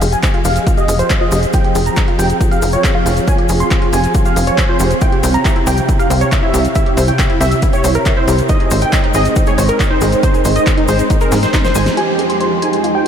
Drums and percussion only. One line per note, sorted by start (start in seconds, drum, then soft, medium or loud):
0.02 open hi-hat loud
0.02 shaker medium
0.12 closed hi-hat medium
0.12 shaker soft
0.23 kick loud
0.23 clap loud
0.23 closed hi-hat medium
0.23 shaker soft
0.34 closed hi-hat soft
0.45 open hi-hat loud
0.45 shaker medium
0.56 closed hi-hat medium
0.56 shaker soft
0.67 kick loud
0.67 closed hi-hat medium
0.67 shaker medium
0.77 closed hi-hat soft
0.77 shaker soft
0.88 open hi-hat loud
0.88 shaker medium
0.99 closed hi-hat medium
0.99 shaker soft
1.10 kick loud
1.10 clap loud
1.10 closed hi-hat medium
1.10 shaker medium
1.32 open hi-hat medium
1.32 shaker medium
1.43 closed hi-hat medium
1.43 shaker soft
1.53 kick loud
1.53 closed hi-hat medium
1.53 shaker medium
1.64 closed hi-hat soft
1.75 open hi-hat loud
1.75 shaker medium
1.86 closed hi-hat medium
1.86 shaker soft
1.96 kick loud
1.96 clap loud
1.96 closed hi-hat medium
1.96 shaker medium
2.08 closed hi-hat soft
2.19 open hi-hat loud
2.19 shaker loud
2.29 closed hi-hat medium
2.29 shaker soft
2.41 kick loud
2.41 closed hi-hat medium
2.41 shaker medium
2.51 closed hi-hat soft
2.51 shaker soft
2.62 open hi-hat loud
2.62 shaker loud
2.72 closed hi-hat medium
2.72 shaker soft
2.84 kick loud
2.84 clap loud
2.84 closed hi-hat medium
2.84 shaker medium
3.06 open hi-hat medium
3.06 shaker medium
3.17 closed hi-hat soft
3.17 shaker soft
3.28 kick loud
3.28 closed hi-hat medium
3.28 shaker medium
3.38 closed hi-hat soft
3.49 open hi-hat loud
3.49 shaker medium
3.60 closed hi-hat soft
3.60 shaker soft
3.71 kick loud
3.71 clap loud
3.71 closed hi-hat medium
3.71 shaker soft
3.82 closed hi-hat soft
3.93 open hi-hat medium
3.93 shaker medium
4.04 closed hi-hat soft
4.04 shaker soft
4.14 kick loud
4.14 closed hi-hat medium
4.14 shaker medium
4.25 closed hi-hat soft
4.25 shaker soft
4.36 open hi-hat loud
4.36 shaker medium
4.47 closed hi-hat soft
4.47 shaker soft
4.58 kick loud
4.58 clap loud
4.58 closed hi-hat medium
4.58 shaker soft
4.80 open hi-hat medium
4.80 shaker loud
4.91 closed hi-hat soft
4.91 shaker soft
5.01 kick loud
5.01 closed hi-hat medium
5.01 shaker medium
5.12 closed hi-hat soft
5.23 open hi-hat loud
5.23 shaker medium
5.34 closed hi-hat soft
5.34 shaker soft
5.45 kick loud
5.45 clap loud
5.45 closed hi-hat medium
5.45 shaker soft
5.56 closed hi-hat soft
5.67 open hi-hat medium
5.67 shaker medium
5.77 closed hi-hat soft
5.77 shaker soft
5.89 kick loud
5.89 closed hi-hat medium
5.89 shaker medium
5.99 closed hi-hat soft
5.99 shaker soft
6.10 open hi-hat loud
6.10 shaker medium
6.21 closed hi-hat soft
6.21 shaker soft
6.32 kick loud
6.32 clap loud
6.32 closed hi-hat medium
6.32 shaker medium
6.54 open hi-hat medium
6.54 shaker loud
6.65 closed hi-hat soft
6.65 shaker soft
6.75 kick loud
6.75 closed hi-hat medium
6.75 shaker medium
6.86 closed hi-hat soft
6.97 open hi-hat loud
6.97 shaker medium
7.07 closed hi-hat medium
7.07 shaker soft
7.19 kick loud
7.19 clap loud
7.19 closed hi-hat medium
7.19 shaker soft
7.30 closed hi-hat soft
7.41 open hi-hat medium
7.41 shaker medium
7.51 closed hi-hat medium
7.51 shaker soft
7.62 kick loud
7.62 closed hi-hat medium
7.62 shaker medium
7.73 closed hi-hat soft
7.73 shaker soft
7.84 open hi-hat loud
7.84 shaker medium
7.94 closed hi-hat medium
7.94 shaker soft
8.06 kick loud
8.06 clap loud
8.06 closed hi-hat medium
8.06 shaker soft
8.28 open hi-hat medium
8.28 shaker medium
8.38 closed hi-hat medium
8.38 shaker soft
8.49 kick loud
8.49 closed hi-hat medium
8.49 shaker soft
8.60 closed hi-hat soft
8.71 open hi-hat loud
8.71 shaker medium
8.81 closed hi-hat medium
8.81 shaker soft
8.92 kick loud
8.92 clap loud
8.92 closed hi-hat medium
8.92 shaker medium
9.04 closed hi-hat soft
9.14 open hi-hat medium
9.14 shaker medium
9.25 closed hi-hat medium
9.25 shaker soft
9.36 kick loud
9.36 closed hi-hat medium
9.36 shaker medium
9.46 closed hi-hat soft
9.46 shaker soft
9.58 open hi-hat loud
9.58 shaker medium
9.68 closed hi-hat medium
9.68 shaker soft
9.80 kick loud
9.80 clap loud
9.80 closed hi-hat medium
9.80 shaker medium
10.01 open hi-hat medium
10.01 shaker medium
10.12 closed hi-hat medium
10.12 shaker soft
10.23 kick loud
10.23 closed hi-hat medium
10.23 shaker soft
10.34 closed hi-hat soft
10.34 shaker soft
10.45 open hi-hat loud
10.45 shaker medium
10.56 closed hi-hat medium
10.56 shaker soft
10.67 kick loud
10.67 clap loud
10.67 closed hi-hat medium
10.67 shaker soft
10.78 closed hi-hat soft
10.88 open hi-hat medium
10.88 shaker medium
10.99 closed hi-hat medium
10.99 shaker soft
11.10 kick loud
11.10 closed hi-hat medium
11.10 shaker soft
11.21 closed hi-hat soft
11.21 shaker soft
11.32 snare medium
11.32 open hi-hat loud
11.32 shaker medium
11.43 snare medium
11.43 closed hi-hat medium
11.43 shaker soft
11.54 kick loud
11.54 snare medium
11.54 clap loud
11.54 closed hi-hat medium
11.54 shaker medium
11.65 snare medium
11.65 closed hi-hat soft
11.65 shaker soft
11.75 open hi-hat medium
11.75 shaker medium
11.86 snare medium
11.86 closed hi-hat medium
11.86 shaker soft
11.97 closed hi-hat medium
12.19 closed hi-hat medium
12.30 closed hi-hat medium
12.41 closed hi-hat medium
12.62 closed hi-hat medium
12.73 closed hi-hat medium
12.84 closed hi-hat medium